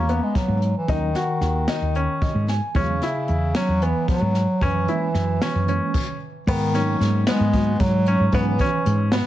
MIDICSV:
0, 0, Header, 1, 6, 480
1, 0, Start_track
1, 0, Tempo, 531444
1, 806, Time_signature, 7, 3, 24, 8
1, 8368, End_track
2, 0, Start_track
2, 0, Title_t, "Grand piano"
2, 0, Program_c, 0, 0
2, 84, Note_on_c, 0, 59, 63
2, 512, Note_off_c, 0, 59, 0
2, 805, Note_on_c, 0, 63, 75
2, 1019, Note_off_c, 0, 63, 0
2, 1044, Note_on_c, 0, 66, 70
2, 1473, Note_off_c, 0, 66, 0
2, 1527, Note_on_c, 0, 63, 70
2, 1741, Note_off_c, 0, 63, 0
2, 1769, Note_on_c, 0, 61, 67
2, 2196, Note_off_c, 0, 61, 0
2, 2493, Note_on_c, 0, 61, 78
2, 2704, Note_off_c, 0, 61, 0
2, 2737, Note_on_c, 0, 64, 68
2, 3160, Note_off_c, 0, 64, 0
2, 3218, Note_on_c, 0, 61, 72
2, 3428, Note_off_c, 0, 61, 0
2, 3455, Note_on_c, 0, 59, 66
2, 3879, Note_off_c, 0, 59, 0
2, 4177, Note_on_c, 0, 61, 82
2, 4387, Note_off_c, 0, 61, 0
2, 4414, Note_on_c, 0, 64, 63
2, 4838, Note_off_c, 0, 64, 0
2, 4898, Note_on_c, 0, 61, 68
2, 5107, Note_off_c, 0, 61, 0
2, 5136, Note_on_c, 0, 61, 66
2, 5559, Note_off_c, 0, 61, 0
2, 5857, Note_on_c, 0, 59, 84
2, 6066, Note_off_c, 0, 59, 0
2, 6095, Note_on_c, 0, 61, 74
2, 6518, Note_off_c, 0, 61, 0
2, 6579, Note_on_c, 0, 59, 76
2, 7000, Note_off_c, 0, 59, 0
2, 7296, Note_on_c, 0, 61, 72
2, 7505, Note_off_c, 0, 61, 0
2, 7537, Note_on_c, 0, 59, 90
2, 7745, Note_off_c, 0, 59, 0
2, 7774, Note_on_c, 0, 61, 73
2, 8196, Note_off_c, 0, 61, 0
2, 8248, Note_on_c, 0, 59, 78
2, 8368, Note_off_c, 0, 59, 0
2, 8368, End_track
3, 0, Start_track
3, 0, Title_t, "Tine electric piano"
3, 0, Program_c, 1, 4
3, 796, Note_on_c, 1, 54, 65
3, 803, Note_on_c, 1, 58, 62
3, 808, Note_on_c, 1, 61, 63
3, 816, Note_on_c, 1, 63, 74
3, 969, Note_off_c, 1, 54, 0
3, 973, Note_off_c, 1, 58, 0
3, 975, Note_off_c, 1, 61, 0
3, 979, Note_off_c, 1, 63, 0
3, 2006, Note_on_c, 1, 75, 62
3, 2230, Note_off_c, 1, 75, 0
3, 2252, Note_on_c, 1, 80, 65
3, 2474, Note_off_c, 1, 80, 0
3, 2483, Note_on_c, 1, 54, 66
3, 2488, Note_on_c, 1, 56, 61
3, 2491, Note_on_c, 1, 59, 61
3, 2500, Note_on_c, 1, 61, 69
3, 2653, Note_off_c, 1, 54, 0
3, 2656, Note_off_c, 1, 56, 0
3, 2658, Note_off_c, 1, 59, 0
3, 2662, Note_off_c, 1, 61, 0
3, 4402, Note_on_c, 1, 52, 59
3, 4407, Note_on_c, 1, 56, 57
3, 4413, Note_on_c, 1, 58, 57
3, 4421, Note_on_c, 1, 61, 67
3, 4573, Note_off_c, 1, 52, 0
3, 4576, Note_off_c, 1, 56, 0
3, 4579, Note_off_c, 1, 58, 0
3, 4583, Note_off_c, 1, 61, 0
3, 5119, Note_on_c, 1, 52, 72
3, 5120, Note_on_c, 1, 56, 61
3, 5128, Note_on_c, 1, 58, 68
3, 5134, Note_on_c, 1, 61, 74
3, 5364, Note_off_c, 1, 52, 0
3, 5364, Note_off_c, 1, 56, 0
3, 5368, Note_off_c, 1, 58, 0
3, 5371, Note_off_c, 1, 61, 0
3, 6080, Note_on_c, 1, 54, 66
3, 6088, Note_on_c, 1, 58, 67
3, 6092, Note_on_c, 1, 59, 64
3, 6100, Note_on_c, 1, 63, 75
3, 6755, Note_off_c, 1, 54, 0
3, 6759, Note_off_c, 1, 58, 0
3, 6761, Note_off_c, 1, 59, 0
3, 6765, Note_off_c, 1, 63, 0
3, 6796, Note_on_c, 1, 54, 61
3, 6807, Note_on_c, 1, 58, 55
3, 6808, Note_on_c, 1, 59, 57
3, 6816, Note_on_c, 1, 66, 69
3, 6969, Note_off_c, 1, 54, 0
3, 6975, Note_off_c, 1, 58, 0
3, 6975, Note_off_c, 1, 59, 0
3, 6979, Note_off_c, 1, 66, 0
3, 7518, Note_on_c, 1, 54, 74
3, 7523, Note_on_c, 1, 56, 62
3, 7530, Note_on_c, 1, 59, 65
3, 7534, Note_on_c, 1, 61, 80
3, 7689, Note_off_c, 1, 54, 0
3, 7692, Note_off_c, 1, 56, 0
3, 7695, Note_off_c, 1, 59, 0
3, 7697, Note_off_c, 1, 61, 0
3, 8368, End_track
4, 0, Start_track
4, 0, Title_t, "Bass clarinet"
4, 0, Program_c, 2, 71
4, 0, Note_on_c, 2, 58, 85
4, 210, Note_on_c, 2, 56, 79
4, 224, Note_off_c, 2, 58, 0
4, 326, Note_on_c, 2, 54, 79
4, 340, Note_off_c, 2, 56, 0
4, 686, Note_off_c, 2, 54, 0
4, 695, Note_on_c, 2, 52, 73
4, 818, Note_on_c, 2, 51, 75
4, 832, Note_off_c, 2, 52, 0
4, 2254, Note_off_c, 2, 51, 0
4, 2482, Note_on_c, 2, 49, 83
4, 3210, Note_on_c, 2, 54, 95
4, 3223, Note_off_c, 2, 49, 0
4, 3456, Note_on_c, 2, 52, 85
4, 3469, Note_off_c, 2, 54, 0
4, 3689, Note_off_c, 2, 52, 0
4, 3694, Note_on_c, 2, 54, 89
4, 4177, Note_on_c, 2, 52, 84
4, 4191, Note_off_c, 2, 54, 0
4, 5612, Note_off_c, 2, 52, 0
4, 5853, Note_on_c, 2, 51, 99
4, 6297, Note_off_c, 2, 51, 0
4, 6575, Note_on_c, 2, 56, 96
4, 7048, Note_on_c, 2, 54, 95
4, 7062, Note_off_c, 2, 56, 0
4, 7478, Note_off_c, 2, 54, 0
4, 7478, Note_on_c, 2, 54, 58
4, 7521, Note_on_c, 2, 52, 74
4, 7535, Note_off_c, 2, 54, 0
4, 8242, Note_off_c, 2, 52, 0
4, 8368, End_track
5, 0, Start_track
5, 0, Title_t, "Fretless electric bass"
5, 0, Program_c, 3, 35
5, 0, Note_on_c, 3, 40, 75
5, 172, Note_off_c, 3, 40, 0
5, 435, Note_on_c, 3, 44, 81
5, 655, Note_off_c, 3, 44, 0
5, 795, Note_on_c, 3, 39, 78
5, 1015, Note_off_c, 3, 39, 0
5, 1274, Note_on_c, 3, 39, 84
5, 1495, Note_off_c, 3, 39, 0
5, 1640, Note_on_c, 3, 39, 74
5, 1859, Note_off_c, 3, 39, 0
5, 2119, Note_on_c, 3, 44, 76
5, 2338, Note_off_c, 3, 44, 0
5, 2480, Note_on_c, 3, 40, 80
5, 2699, Note_off_c, 3, 40, 0
5, 2970, Note_on_c, 3, 40, 85
5, 3185, Note_off_c, 3, 40, 0
5, 3327, Note_on_c, 3, 40, 72
5, 3543, Note_off_c, 3, 40, 0
5, 3804, Note_on_c, 3, 44, 81
5, 4022, Note_off_c, 3, 44, 0
5, 4166, Note_on_c, 3, 42, 78
5, 4383, Note_off_c, 3, 42, 0
5, 4645, Note_on_c, 3, 42, 86
5, 4862, Note_off_c, 3, 42, 0
5, 5011, Note_on_c, 3, 42, 74
5, 5225, Note_off_c, 3, 42, 0
5, 5845, Note_on_c, 3, 44, 89
5, 6276, Note_off_c, 3, 44, 0
5, 6325, Note_on_c, 3, 44, 90
5, 6541, Note_off_c, 3, 44, 0
5, 6683, Note_on_c, 3, 44, 90
5, 7007, Note_off_c, 3, 44, 0
5, 7044, Note_on_c, 3, 44, 90
5, 7367, Note_off_c, 3, 44, 0
5, 7406, Note_on_c, 3, 44, 78
5, 7513, Note_off_c, 3, 44, 0
5, 7522, Note_on_c, 3, 44, 86
5, 7738, Note_off_c, 3, 44, 0
5, 8002, Note_on_c, 3, 44, 85
5, 8325, Note_off_c, 3, 44, 0
5, 8368, End_track
6, 0, Start_track
6, 0, Title_t, "Drums"
6, 77, Note_on_c, 9, 42, 54
6, 167, Note_off_c, 9, 42, 0
6, 318, Note_on_c, 9, 36, 95
6, 318, Note_on_c, 9, 38, 30
6, 318, Note_on_c, 9, 42, 72
6, 408, Note_off_c, 9, 38, 0
6, 408, Note_off_c, 9, 42, 0
6, 409, Note_off_c, 9, 36, 0
6, 558, Note_on_c, 9, 42, 53
6, 648, Note_off_c, 9, 42, 0
6, 797, Note_on_c, 9, 42, 69
6, 799, Note_on_c, 9, 36, 92
6, 887, Note_off_c, 9, 42, 0
6, 889, Note_off_c, 9, 36, 0
6, 1037, Note_on_c, 9, 38, 32
6, 1037, Note_on_c, 9, 42, 54
6, 1128, Note_off_c, 9, 38, 0
6, 1128, Note_off_c, 9, 42, 0
6, 1278, Note_on_c, 9, 38, 29
6, 1278, Note_on_c, 9, 42, 49
6, 1368, Note_off_c, 9, 38, 0
6, 1368, Note_off_c, 9, 42, 0
6, 1515, Note_on_c, 9, 38, 93
6, 1515, Note_on_c, 9, 42, 68
6, 1605, Note_off_c, 9, 38, 0
6, 1605, Note_off_c, 9, 42, 0
6, 1760, Note_on_c, 9, 42, 53
6, 1851, Note_off_c, 9, 42, 0
6, 2003, Note_on_c, 9, 36, 94
6, 2004, Note_on_c, 9, 42, 69
6, 2093, Note_off_c, 9, 36, 0
6, 2095, Note_off_c, 9, 42, 0
6, 2241, Note_on_c, 9, 38, 30
6, 2241, Note_on_c, 9, 42, 53
6, 2331, Note_off_c, 9, 38, 0
6, 2331, Note_off_c, 9, 42, 0
6, 2480, Note_on_c, 9, 42, 72
6, 2483, Note_on_c, 9, 36, 91
6, 2570, Note_off_c, 9, 42, 0
6, 2573, Note_off_c, 9, 36, 0
6, 2723, Note_on_c, 9, 38, 31
6, 2723, Note_on_c, 9, 42, 58
6, 2814, Note_off_c, 9, 38, 0
6, 2814, Note_off_c, 9, 42, 0
6, 2960, Note_on_c, 9, 42, 53
6, 3050, Note_off_c, 9, 42, 0
6, 3203, Note_on_c, 9, 38, 95
6, 3203, Note_on_c, 9, 42, 75
6, 3294, Note_off_c, 9, 38, 0
6, 3294, Note_off_c, 9, 42, 0
6, 3447, Note_on_c, 9, 42, 56
6, 3537, Note_off_c, 9, 42, 0
6, 3687, Note_on_c, 9, 36, 92
6, 3688, Note_on_c, 9, 42, 76
6, 3778, Note_off_c, 9, 36, 0
6, 3778, Note_off_c, 9, 42, 0
6, 3927, Note_on_c, 9, 38, 30
6, 3927, Note_on_c, 9, 42, 58
6, 4018, Note_off_c, 9, 38, 0
6, 4018, Note_off_c, 9, 42, 0
6, 4166, Note_on_c, 9, 42, 71
6, 4168, Note_on_c, 9, 36, 91
6, 4256, Note_off_c, 9, 42, 0
6, 4258, Note_off_c, 9, 36, 0
6, 4408, Note_on_c, 9, 42, 56
6, 4498, Note_off_c, 9, 42, 0
6, 4648, Note_on_c, 9, 38, 29
6, 4648, Note_on_c, 9, 42, 50
6, 4739, Note_off_c, 9, 38, 0
6, 4739, Note_off_c, 9, 42, 0
6, 4891, Note_on_c, 9, 38, 95
6, 4891, Note_on_c, 9, 42, 70
6, 4981, Note_off_c, 9, 38, 0
6, 4981, Note_off_c, 9, 42, 0
6, 5128, Note_on_c, 9, 42, 51
6, 5218, Note_off_c, 9, 42, 0
6, 5368, Note_on_c, 9, 36, 93
6, 5368, Note_on_c, 9, 49, 77
6, 5458, Note_off_c, 9, 36, 0
6, 5458, Note_off_c, 9, 49, 0
6, 5848, Note_on_c, 9, 36, 105
6, 5851, Note_on_c, 9, 49, 95
6, 5939, Note_off_c, 9, 36, 0
6, 5942, Note_off_c, 9, 49, 0
6, 6088, Note_on_c, 9, 38, 35
6, 6088, Note_on_c, 9, 42, 62
6, 6179, Note_off_c, 9, 38, 0
6, 6179, Note_off_c, 9, 42, 0
6, 6333, Note_on_c, 9, 38, 32
6, 6333, Note_on_c, 9, 42, 61
6, 6423, Note_off_c, 9, 38, 0
6, 6423, Note_off_c, 9, 42, 0
6, 6564, Note_on_c, 9, 38, 101
6, 6564, Note_on_c, 9, 42, 88
6, 6654, Note_off_c, 9, 38, 0
6, 6654, Note_off_c, 9, 42, 0
6, 6801, Note_on_c, 9, 42, 61
6, 6806, Note_on_c, 9, 36, 69
6, 6892, Note_off_c, 9, 42, 0
6, 6896, Note_off_c, 9, 36, 0
6, 7043, Note_on_c, 9, 42, 84
6, 7045, Note_on_c, 9, 36, 104
6, 7133, Note_off_c, 9, 42, 0
6, 7136, Note_off_c, 9, 36, 0
6, 7280, Note_on_c, 9, 42, 66
6, 7370, Note_off_c, 9, 42, 0
6, 7517, Note_on_c, 9, 42, 79
6, 7522, Note_on_c, 9, 36, 102
6, 7607, Note_off_c, 9, 42, 0
6, 7613, Note_off_c, 9, 36, 0
6, 7758, Note_on_c, 9, 42, 63
6, 7762, Note_on_c, 9, 36, 71
6, 7848, Note_off_c, 9, 42, 0
6, 7853, Note_off_c, 9, 36, 0
6, 8000, Note_on_c, 9, 42, 61
6, 8091, Note_off_c, 9, 42, 0
6, 8234, Note_on_c, 9, 38, 103
6, 8234, Note_on_c, 9, 42, 78
6, 8324, Note_off_c, 9, 38, 0
6, 8324, Note_off_c, 9, 42, 0
6, 8368, End_track
0, 0, End_of_file